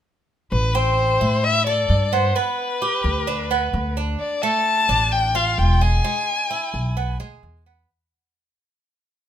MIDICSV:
0, 0, Header, 1, 4, 480
1, 0, Start_track
1, 0, Key_signature, 0, "minor"
1, 0, Tempo, 461184
1, 540, Time_signature, 4, 2, 24, 8
1, 9660, End_track
2, 0, Start_track
2, 0, Title_t, "Violin"
2, 0, Program_c, 0, 40
2, 542, Note_on_c, 0, 71, 88
2, 780, Note_on_c, 0, 72, 91
2, 796, Note_off_c, 0, 71, 0
2, 1499, Note_on_c, 0, 76, 101
2, 1514, Note_off_c, 0, 72, 0
2, 1731, Note_off_c, 0, 76, 0
2, 1737, Note_on_c, 0, 74, 86
2, 2216, Note_on_c, 0, 72, 82
2, 2232, Note_off_c, 0, 74, 0
2, 2450, Note_on_c, 0, 71, 78
2, 2466, Note_off_c, 0, 72, 0
2, 4127, Note_off_c, 0, 71, 0
2, 4369, Note_on_c, 0, 74, 85
2, 4605, Note_on_c, 0, 81, 103
2, 4620, Note_off_c, 0, 74, 0
2, 5328, Note_on_c, 0, 79, 91
2, 5344, Note_off_c, 0, 81, 0
2, 5573, Note_on_c, 0, 77, 89
2, 5589, Note_off_c, 0, 79, 0
2, 5812, Note_on_c, 0, 79, 79
2, 5828, Note_off_c, 0, 77, 0
2, 6052, Note_on_c, 0, 80, 91
2, 6067, Note_off_c, 0, 79, 0
2, 7494, Note_off_c, 0, 80, 0
2, 9660, End_track
3, 0, Start_track
3, 0, Title_t, "Cuban tres"
3, 0, Program_c, 1, 25
3, 778, Note_on_c, 1, 60, 80
3, 1242, Note_off_c, 1, 60, 0
3, 1259, Note_on_c, 1, 64, 63
3, 1721, Note_off_c, 1, 64, 0
3, 1735, Note_on_c, 1, 69, 67
3, 2199, Note_off_c, 1, 69, 0
3, 2213, Note_on_c, 1, 59, 68
3, 2441, Note_off_c, 1, 59, 0
3, 2453, Note_on_c, 1, 59, 73
3, 2917, Note_off_c, 1, 59, 0
3, 2932, Note_on_c, 1, 67, 66
3, 3396, Note_off_c, 1, 67, 0
3, 3407, Note_on_c, 1, 62, 70
3, 3641, Note_off_c, 1, 62, 0
3, 3651, Note_on_c, 1, 59, 72
3, 4115, Note_off_c, 1, 59, 0
3, 4131, Note_on_c, 1, 62, 55
3, 4595, Note_off_c, 1, 62, 0
3, 4612, Note_on_c, 1, 57, 86
3, 5076, Note_off_c, 1, 57, 0
3, 5089, Note_on_c, 1, 62, 63
3, 5555, Note_off_c, 1, 62, 0
3, 5567, Note_on_c, 1, 65, 74
3, 6034, Note_off_c, 1, 65, 0
3, 6050, Note_on_c, 1, 56, 67
3, 6279, Note_off_c, 1, 56, 0
3, 6292, Note_on_c, 1, 56, 73
3, 6758, Note_off_c, 1, 56, 0
3, 6771, Note_on_c, 1, 64, 66
3, 7238, Note_off_c, 1, 64, 0
3, 7251, Note_on_c, 1, 59, 70
3, 7485, Note_off_c, 1, 59, 0
3, 7492, Note_on_c, 1, 56, 80
3, 7960, Note_off_c, 1, 56, 0
3, 7975, Note_on_c, 1, 59, 60
3, 8209, Note_off_c, 1, 59, 0
3, 9660, End_track
4, 0, Start_track
4, 0, Title_t, "Upright bass"
4, 0, Program_c, 2, 32
4, 539, Note_on_c, 2, 33, 96
4, 1214, Note_off_c, 2, 33, 0
4, 1255, Note_on_c, 2, 45, 84
4, 1931, Note_off_c, 2, 45, 0
4, 1970, Note_on_c, 2, 43, 81
4, 2394, Note_off_c, 2, 43, 0
4, 3165, Note_on_c, 2, 38, 85
4, 3844, Note_off_c, 2, 38, 0
4, 3886, Note_on_c, 2, 38, 87
4, 4311, Note_off_c, 2, 38, 0
4, 5089, Note_on_c, 2, 33, 89
4, 5768, Note_off_c, 2, 33, 0
4, 5809, Note_on_c, 2, 28, 77
4, 6234, Note_off_c, 2, 28, 0
4, 7011, Note_on_c, 2, 35, 85
4, 7459, Note_off_c, 2, 35, 0
4, 7492, Note_on_c, 2, 38, 60
4, 7716, Note_off_c, 2, 38, 0
4, 7732, Note_on_c, 2, 40, 82
4, 8158, Note_off_c, 2, 40, 0
4, 9660, End_track
0, 0, End_of_file